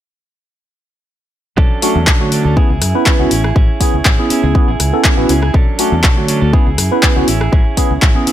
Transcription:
1.57 fingered electric bass B1, clean electric guitar F#3 C#4 D4 A4, kick
1.82 clean electric guitar F#3 C#4 D4 A4, tine electric piano A3 C#4 D4 F#4, open hi-hat
1.96 fingered electric bass E2
2.07 fingered electric bass B1, clean electric guitar F#3 C#4 D4 A4, kick, clap
2.20 tine electric piano D3 A3 F#4 C#5
2.31 clean electric guitar F#3 C#4 D4 A4, muted fingered electric bass stroke, open hi-hat
2.45 fingered electric bass D2, clean electric guitar C#4 D4 A4
2.56 clean electric guitar B3 E4 G#4, tine electric piano B3 C#4 E4 G#4, kick
2.69 fingered electric bass C#2, clean electric guitar E4 G#4
2.82 fingered electric bass F#2, cross-stick, open hi-hat
2.95 tine electric piano B3 C#4 E4 B4
3.06 clean electric guitar B3 E4 G#4, kick, clap
3.19 fingered electric bass C#2, tine electric piano B3 C#4 E4 F#4
3.31 fingered electric bass A1, clean electric guitar C#4 E4 G#4, open hi-hat
3.44 clean electric guitar E4 G#4, cross-stick
3.56 clean electric guitar C#4 E4 G#4, kick
3.80 tine electric piano B3 C#4 E4 G#4, clean electric guitar C#4 E4 G#4, kick, open hi-hat
3.94 fingered electric bass C#2
4.05 fingered electric bass A1, clean electric guitar C#4 E4 G#4, kick, clap
4.18 tine electric piano B3 C#4 E4 G#4
4.30 clean electric guitar C#4 E4 G#4, muted fingered electric bass stroke, open hi-hat
4.43 fingered electric bass C#2, clean electric guitar E4 G#4
4.55 tine electric piano B3 C#4 E4 G#4, kick
4.68 fingered electric bass A1, clean electric guitar E4 G#4
4.80 fingered electric bass C#2, cross-stick, open hi-hat
4.93 tine electric piano B3 C#4 E4 A4
5.04 clean electric guitar C#4 E4 G#4, kick, clap
5.17 fingered electric bass A1, tine electric piano B3 C#4 E4 F#4
5.29 fingered electric bass C#2, clean electric guitar C#4 E4 G#4, open hi-hat
5.42 clean electric guitar E4 G#4, cross-stick
5.54 fingered electric bass B1, clean electric guitar F#3 C#4 D4 A4, kick
5.78 clean electric guitar F#3 C#4 D4 A4, tine electric piano A3 C#4 D4 F#4, open hi-hat
5.92 fingered electric bass E2
6.03 fingered electric bass B1, clean electric guitar F#3 C#4 D4 A4, kick, clap
6.17 tine electric piano D3 A3 F#4 C#5
6.28 clean electric guitar F#3 C#4 D4 A4, muted fingered electric bass stroke, open hi-hat
6.41 fingered electric bass D2, clean electric guitar C#4 D4 A4
6.53 clean electric guitar B3 E4 G#4, tine electric piano B3 C#4 E4 G#4, muted fingered electric bass stroke, kick
6.66 fingered electric bass C#2, clean electric guitar E4 G#4
6.78 fingered electric bass F#2, cross-stick, open hi-hat
6.91 tine electric piano B3 C#4 E4 B4
7.02 clean electric guitar B3 E4 G#4, kick, clap
7.16 fingered electric bass C#2, tine electric piano B3 C#4 E4 F#4
7.27 fingered electric bass A1, clean electric guitar C#4 E4 G#4, open hi-hat
7.41 clean electric guitar E4 G#4, cross-stick
7.52 clean electric guitar C#4 E4 G#4, kick
7.77 tine electric piano B3 C#4 E4 G#4, clean electric guitar C#4 E4 G#4, kick, open hi-hat
7.91 fingered electric bass C#2
8.02 fingered electric bass A1, clean electric guitar C#4 E4 G#4, kick, clap
8.15 tine electric piano B3 C#4 E4 G#4
8.26 clean electric guitar C#4 E4 G#4, muted fingered electric bass stroke, open hi-hat

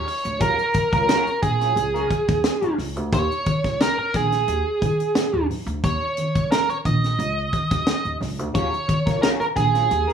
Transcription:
0.06 lead electric guitar C#5, muted clean electric guitar stroke, open hi-hat
0.23 upright bass D2, muted clean electric guitar stroke, closed hi-hat
0.39 upright bass D#2, clean electric guitar F#3 C#4 F4 G#4, lead electric guitar A#4, kick, closed hi-hat
0.57 muted clean electric guitar stroke, closed hi-hat
0.73 muted clean electric guitar stroke, kick, closed hi-hat
0.92 upright bass C#2, clean electric guitar F#3 C#4 F4 A#4, lead electric guitar A#4, kick, closed hi-hat
1.07 clean electric guitar F#3 C#4 F4 G#4, snare, closed hi-hat
1.27 muted upright bass stroke, closed hi-hat
1.42 upright bass A#1, lead electric guitar G#4, muted clean electric guitar stroke, kick, closed hi-hat
1.60 clean electric guitar F#3 C#4 F4 G#4, snare, closed hi-hat
1.76 upright bass C#2, muted clean electric guitar stroke, closed hi-hat
1.94 clean electric guitar F#3 C#4 F4 A#4, closed hi-hat
2.08 muted clean electric guitar stroke, kick, closed hi-hat
2.27 upright bass D#2, muted clean electric guitar stroke, kick, snare, closed hi-hat
2.44 muted clean electric guitar stroke, snare, closed hi-hat
2.62 upright bass D#2, clean electric guitar F#3 C#4 F4 G#4, closed hi-hat
2.77 upright bass C#2, muted clean electric guitar stroke, snare, open hi-hat
2.96 upright bass D2, muted clean electric guitar stroke, closed hi-hat
3.12 upright bass D#2, lead electric guitar C#5, kick, closed hi-hat, muted conga
3.31 closed hi-hat
3.46 kick, closed hi-hat, high conga
3.64 upright bass C#2, kick, snare, closed hi-hat
3.81 lead electric guitar A#4, snare, closed hi-hat
3.98 lead electric guitar A#4, muted upright bass stroke
4.14 upright bass A#1, lead electric guitar G#4, kick, snare, closed hi-hat, high conga, low conga
4.32 snare, closed hi-hat
4.48 upright bass D#2, closed hi-hat
4.82 upright bass D#3, kick, closed hi-hat, high conga
5.00 closed hi-hat
5.15 muted upright bass stroke, snare, closed hi-hat, muted conga
5.33 upright bass D#2, muted conga
5.50 open hi-hat, low conga
5.66 upright bass D2, closed hi-hat
5.84 upright bass D#2, lead electric guitar C#5, kick, closed hi-hat, muted conga
6.02 muted conga
6.17 closed hi-hat, high conga
6.35 upright bass C#2, kick, closed hi-hat
6.51 lead electric guitar A#4, snare, closed hi-hat
6.69 lead electric guitar C#5, muted upright bass stroke, closed hi-hat, muted conga
6.85 upright bass A#1, lead electric guitar D#5, kick, closed hi-hat, high conga, low conga
7.04 snare, closed hi-hat
7.19 upright bass C#2, closed hi-hat, muted conga
7.53 kick, closed hi-hat, high conga
7.71 upright bass D#2, kick, snare, closed hi-hat
7.87 snare, closed hi-hat
8.04 upright bass D#2, closed hi-hat, muted conga
8.21 upright bass C#2, snare, open hi-hat, low conga
8.39 upright bass D2, closed hi-hat
8.53 upright bass D#2, clean electric guitar F#3 C#4 F4 G#4, lead electric guitar C#5, kick, closed hi-hat
8.72 muted clean electric guitar stroke, closed hi-hat, muted conga
8.87 muted clean electric guitar stroke, kick, closed hi-hat, high conga
9.06 upright bass C#2, clean electric guitar F#3 C#4 F4 A#4, kick, snare, closed hi-hat
9.22 clean electric guitar F#3 C#4 F4 G#4, lead electric guitar A#4, snare, closed hi-hat
9.40 lead electric guitar A#4, muted upright bass stroke, closed hi-hat, muted conga
9.55 upright bass A#1, lead electric guitar G#4, muted clean electric guitar stroke, kick, snare, closed hi-hat, high conga, low conga
9.73 clean electric guitar F#3 C#4 F4 G#4, snare, closed hi-hat
9.90 upright bass D#2, muted clean electric guitar stroke, closed hi-hat, muted conga
10.07 clean electric guitar F#3 C#4 F4 A#4, closed hi-hat, muted conga

